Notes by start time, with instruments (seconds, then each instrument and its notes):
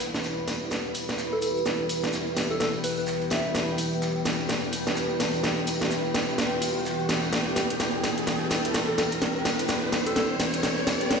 Already playing: analog synth pad E3 B3 G4, ambient pad E4 B4, riser
0.00 open hi-hat, tambourine
0.15 snare, closed hi-hat, tambourine
0.23 snare, tambourine, shaker
0.37 tambourine
0.48 snare, open hi-hat, tambourine, shaker
0.53 ambient pad G5
0.62 tambourine
0.71 snare, tambourine, shaker
0.85 tambourine
0.94 open hi-hat, tambourine, shaker
1.09 snare, tambourine
1.18 snare, tambourine, shaker
1.32 soft synth lead A4, tambourine
1.41 soft synth lead A4, open hi-hat, tambourine, shaker
1.57 closed hi-hat, tambourine
1.65 snare, tambourine, shaker
1.81 tambourine
1.89 open hi-hat, tambourine, shaker
2.03 snare, tambourine
2.13 snare, tambourine, shaker
2.27 tambourine
2.36 snare, open hi-hat, tambourine, shaker
2.50 soft synth lead A4, tambourine
2.60 soft synth lead A4, snare, tambourine, shaker
2.74 tambourine
2.84 soft synth lead B4, open hi-hat, tambourine
2.97 soft synth lead B4, tambourine
3.06 snare, tambourine, shaker
3.21 closed hi-hat, tambourine
3.30 soft synth lead E5, snare, open hi-hat, tambourine, shaker
3.45 tambourine
3.55 snare, tambourine, shaker
3.69 tambourine
3.78 open hi-hat, tambourine, shaker
3.92 closed hi-hat, tambourine
4.02 snare, tambourine, shaker
4.16 tambourine
4.25 snare, open hi-hat, tambourine, shaker
4.40 tambourine
4.49 snare, tambourine, shaker
4.64 tambourine
4.73 open hi-hat, tambourine, shaker
4.87 snare, tambourine
4.96 snare, tambourine, shaker
5.10 tambourine
5.20 snare, open hi-hat, tambourine, shaker
5.33 closed hi-hat, tambourine
5.44 snare, tambourine, shaker
5.58 tambourine
5.67 open hi-hat, tambourine, shaker
5.81 snare, tambourine
5.91 snare, tambourine, shaker
6.05 tambourine
6.14 snare, open hi-hat, tambourine, shaker
6.28 tambourine
6.38 snare, tambourine, shaker
6.52 tambourine
6.62 open hi-hat, tambourine
6.77 tambourine
6.85 snare, tambourine, shaker
6.99 closed hi-hat, tambourine
7.09 snare, open hi-hat, tambourine, shaker
7.23 tambourine
7.33 snare, closed hi-hat, tambourine, shaker
7.47 tambourine
7.56 snare, open hi-hat, tambourine, shaker
7.70 closed hi-hat, tambourine
7.80 snare, closed hi-hat, tambourine, shaker
7.94 tambourine
8.03 snare, open hi-hat, tambourine, shaker
8.18 closed hi-hat, tambourine
8.27 snare, closed hi-hat, tambourine, shaker
8.41 tambourine
8.50 snare, open hi-hat, tambourine, shaker
8.65 closed hi-hat, tambourine
8.74 snare, closed hi-hat, tambourine, shaker
8.88 soft synth lead A4, tambourine
8.98 soft synth lead A4, snare, open hi-hat, tambourine, shaker
9.12 closed hi-hat, tambourine
9.21 snare, closed hi-hat, tambourine, shaker
9.36 tambourine
9.45 snare, open hi-hat, tambourine, shaker
9.59 closed hi-hat, tambourine
9.68 snare, closed hi-hat, tambourine, shaker
9.82 tambourine
9.92 snare, open hi-hat, tambourine, shaker
10.07 soft synth lead A4, closed hi-hat, tambourine
10.16 soft synth lead A4, snare, closed hi-hat, tambourine, shaker
10.30 tambourine
10.40 snare, open hi-hat, tambourine
10.54 closed hi-hat, tambourine
10.63 snare, closed hi-hat, tambourine, shaker
10.78 closed hi-hat, tambourine
10.87 snare, open hi-hat, tambourine, shaker
11.01 closed hi-hat, tambourine
11.11 snare, closed hi-hat, tambourine, shaker